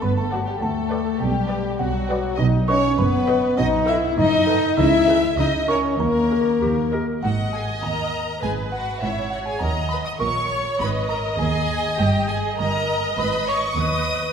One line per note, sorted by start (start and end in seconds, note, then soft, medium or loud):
0.01 0.49 G1 medium
0.01 0.48 G2 medium
0.01 0.17 B3 medium
0.01 0.17 B4 medium
0.01 0.16 B5 medium
0.17 0.24 A3 medium
0.17 0.31 A4 medium
0.17 0.31 A5 medium
0.31 0.40 F#3 medium
0.31 0.46 F#4 medium
0.31 0.54 B4 soft
0.31 0.54 D5 soft
0.31 0.46 F#5 medium
0.31 0.53 G5 soft
0.45 0.54 G3 medium
0.45 0.60 G4 medium
0.45 0.61 G5 medium
0.59 1.08 D2 medium
0.59 1.20 A3 medium
0.59 1.19 A4 medium
0.59 1.17 A5 medium
0.91 1.13 B4 medium
0.91 1.13 D5 medium
0.91 1.13 G5 medium
1.19 1.67 B1 medium
1.19 1.67 B2 medium
1.19 1.79 G3 medium
1.19 1.79 G4 medium
1.19 1.76 G5 medium
1.49 1.72 B4 medium
1.49 1.72 D5 medium
1.49 1.72 G5 medium
1.79 2.26 B1 medium
1.79 2.26 B2 medium
1.79 2.38 F#3 medium
1.79 2.37 F#4 medium
1.79 2.35 F#5 medium
2.10 2.32 B4 medium
2.10 2.32 D5 medium
2.10 2.32 G5 medium
2.36 2.86 B1 medium
2.36 2.86 B2 medium
2.36 2.69 D#4 loud
2.36 2.44 D#5 medium
2.36 2.66 D#6 medium
2.68 2.99 C#4 medium
2.68 2.91 B4 medium
2.68 2.98 C#5 medium
2.68 2.91 D#5 medium
2.68 2.91 F#5 medium
2.68 2.96 C#6 medium
2.98 3.45 F#1 medium
2.98 3.45 F#2 medium
2.98 3.58 B3 medium
2.98 3.57 B4 medium
2.98 3.54 B5 medium
3.28 3.51 B4 medium
3.28 3.50 D#5 medium
3.28 3.51 F#5 medium
3.57 4.05 B1 medium
3.57 4.05 B2 medium
3.57 3.88 D#4 loud
3.57 3.65 D#5 medium
3.57 3.85 D#6 medium
3.87 4.19 E4 loud
3.87 4.10 A4 medium
3.87 4.10 B4 medium
3.87 3.95 E5 medium
3.87 4.10 F#5 medium
3.87 4.15 E6 medium
4.17 4.65 F#1 medium
4.17 4.66 F#2 medium
4.17 4.77 D#4 loud
4.17 4.77 D#5 loud
4.17 4.74 D#6 medium
4.47 4.70 A4 medium
4.47 4.70 B4 medium
4.47 4.70 F#5 medium
4.77 5.25 C#2 medium
4.77 5.25 C#3 loud
4.77 5.22 E4 loud
4.77 5.37 E5 medium
4.77 5.34 E6 medium
5.07 5.30 G#4 medium
5.07 5.30 B4 medium
5.37 5.86 C#2 medium
5.37 5.87 C#3 medium
5.37 5.53 D#4 medium
5.37 5.68 D#5 medium
5.37 5.66 D#6 medium
5.68 5.99 C#4 medium
5.68 5.92 A#4 medium
5.68 5.77 C#5 medium
5.68 5.92 E5 medium
5.68 5.97 C#6 medium
5.98 6.48 D#2 medium
5.98 6.48 D#3 medium
5.98 6.90 A#3 medium
5.98 6.90 A#4 medium
5.98 6.89 A#5 medium
6.30 6.54 G#4 medium
6.30 6.53 A#4 medium
6.30 6.53 D#5 medium
6.61 7.10 D#2 medium
6.61 7.10 D#3 medium
6.61 6.76 G4 medium
6.92 7.15 G4 medium
6.92 7.15 A#4 medium
6.92 7.06 A#4 medium
6.92 7.16 D#5 medium
7.23 7.71 G#1 medium
7.23 7.71 G#2 medium
7.23 7.32 F#4 medium
7.23 8.39 D#5 medium
7.23 7.51 F#5 medium
7.53 7.62 G#4 soft
7.53 7.81 G#5 soft
7.53 7.84 G#5 medium
7.83 8.30 D#2 medium
7.83 8.42 A#4 medium
7.83 8.39 A#5 medium
7.83 8.43 A#5 medium
8.42 8.90 G#1 medium
8.42 8.90 G#2 medium
8.42 8.51 G#4 medium
8.42 9.01 B4 medium
8.42 8.50 G#5 medium
8.42 8.70 G#5 medium
8.72 9.02 F#4 medium
8.72 9.01 F#5 medium
8.72 9.00 F#5 medium
9.01 9.50 G#1 medium
9.01 9.49 G#2 medium
9.01 9.32 E4 medium
9.01 9.61 C#5 medium
9.01 9.31 E5 medium
9.01 9.30 E5 medium
9.30 9.47 F#4 medium
9.30 9.45 F#5 medium
9.30 9.38 F#5 medium
9.46 9.62 G#4 medium
9.46 9.60 G#5 medium
9.46 9.61 G#5 medium
9.60 10.08 D#2 medium
9.60 10.09 D#2 medium
9.60 9.69 A#4 medium
9.60 10.19 D#5 medium
9.60 9.88 A#5 medium
9.60 9.91 A#5 medium
9.89 9.98 B4 medium
9.89 10.04 B5 medium
9.89 9.96 B5 medium
10.05 10.12 D#5 medium
10.05 10.19 D#6 medium
10.05 10.11 D#6 medium
10.19 10.68 A#1 medium
10.19 10.68 A#2 medium
10.19 10.28 A#4 medium
10.19 10.79 C#5 medium
10.19 10.78 C#6 medium
10.19 10.75 C#6 medium
10.50 10.79 C#5 medium
10.79 11.26 G#1 medium
10.79 11.27 G#2 medium
10.79 11.09 B4 medium
10.79 12.57 D#5 medium
10.79 11.07 B5 medium
10.79 10.88 B5 medium
11.09 11.38 A#4 medium
11.09 11.37 A#5 medium
11.09 11.17 A#5 medium
11.39 11.86 D#2 medium
11.39 11.97 G#4 medium
11.39 11.97 G#5 medium
11.39 11.94 G#5 medium
11.98 12.45 G1 medium
11.98 12.46 G2 medium
11.98 12.27 G4 medium
11.98 12.28 G5 medium
11.98 12.26 G5 medium
12.28 12.57 G#4 medium
12.28 12.36 G#5 medium
12.28 12.56 G#5 medium
12.57 13.05 G1 medium
12.57 13.06 G2 medium
12.57 13.16 A#4 medium
12.57 13.75 D#5 medium
12.57 13.16 A#5 medium
12.57 13.14 A#5 medium
13.17 13.65 G#1 medium
13.17 13.65 G#2 medium
13.17 13.46 B4 medium
13.17 13.46 B5 medium
13.17 13.47 B5 medium
13.47 13.55 C#5 medium
13.47 13.77 C#6 medium
13.47 13.76 C#6 medium
13.77 14.24 D#2 medium
13.77 14.25 D#2 medium
13.77 14.33 B4 medium
13.77 14.33 D#5 medium
13.77 14.33 D#6 medium